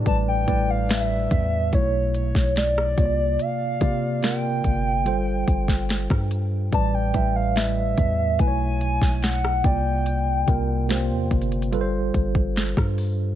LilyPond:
<<
  \new Staff \with { instrumentName = "Soft synth lead" } { \time 4/4 \key c \mixolydian \tempo 4 = 72 a''16 g''8 f''16 e''4 cis''8 cis''8 d''4 | f''4 g''2~ g''8 r8 | a''16 g''8 f''16 e''4 gis''4 fis''8 g''8~ | g''4. r2 r8 | }
  \new Staff \with { instrumentName = "Tine electric piano" } { \time 4/4 \key c \mixolydian <a, g b' d''>8 <a, g b' d''>8 <a, g b' e''>4 <b, a e' cis''>4. <c bes f' cis'' d''>8~ | <c bes f' cis'' d''>8 <c bes f' d''>8 <c bes f' bes'>4 <g f' a' c''>4. r8 | <a, g b' d''>8 <a, g b' e''>8 <a, g b' dis'' e''>4 <b, a e' b' cis''>4. <c bes f' d''>8~ | <c bes f' d''>8 <c bes f' bes'>8 <c bes f' c''>4 <g f' a' b' c''>4. r8 | }
  \new Staff \with { instrumentName = "808-style bass" } { \clef bass \time 4/4 \key c \mixolydian a,,8 a,,4 e,8 b,,8. b,,8. c,8 | r8 c4 g,,4 g,,8. g,8. | a,,8 a,,4 e,8 b,,8. b,,8. c,8~ | c,8 c,8. e,16 g,,4 g,,8. g,8. | }
  \new DrumStaff \with { instrumentName = "Drums" } \drummode { \time 4/4 <hh bd>8 <hh bd>8 <hh sn>8 <hh bd>8 <hh bd>8 hh16 <bd sn>16 <hh sn>16 ss16 <hh bd>8 | hh8 <hh bd>8 <hh sn>8 <hh bd>8 hh8 <hh bd>16 <bd sn>16 <hh sn>16 <bd ss>16 hh8 | <hh bd>8 <hh bd>8 <hh sn>8 <hh bd>8 <hh bd>8 hh16 <bd sn>16 <hh sn>16 ss16 <hh bd>8 | hh8 <hh bd>8 <hh sn>8 <hh bd>32 hh32 hh32 hh32 hh8 <hh bd>16 bd16 <hh sn>16 <bd ss>16 hho8 | }
>>